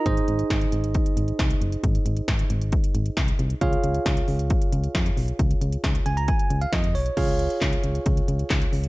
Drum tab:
CC |----------------|----------------|----------------|----------------|
HH |xxxxxxxxxxxxxxxx|xxxxxxxxxxxxxxxx|xxxxxxoxxxxxxxox|xxxxxxxxxxxxxxox|
CP |----------------|----------------|----------------|----------------|
SD |----o-------o---|----o-------o---|----o-------o---|----o-------o---|
BD |o---o---o---o---|o---o---o---o---|o---o---o---o---|o---o---o---o---|

CC |x---------------|
HH |xxxxxxxxxxxxxxox|
CP |----x-------x---|
SD |----o-------o---|
BD |o---o---o---o---|